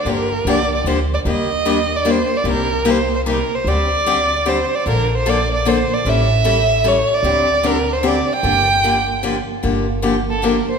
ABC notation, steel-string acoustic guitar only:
X:1
M:3/4
L:1/8
Q:"Swing" 1/4=150
K:Gm
V:1 name="Steel-string acoustic guitar"
[D,F,B,DG] z [D,F,B,DG] z [D,F,B,DG] z | [E,G,B,DG] z [E,G,B,DG] z [E,G,B,DG] z | [C,G,B,EG] z [C,G,B,EG] z [C,G,B,EG] z | [D,G,CDG] z [D,G,CDG] z [D,G,CDG] z |
[D,F,B,DA] z [D,F,B,DA] z [D,F,B,DA] z | [=E,G,^C=EA] z [E,G,CEA] z [E,G,CEA] z | [D,G,CDG] z [D,G,CDG] z [D,G,CDG] z | [D,F,B,DG] z [D,F,B,DG] z [D,F,B,DG] z |
[D,F,B,DG] z [D,F,B,DG] z [D,F,B,DG] z |]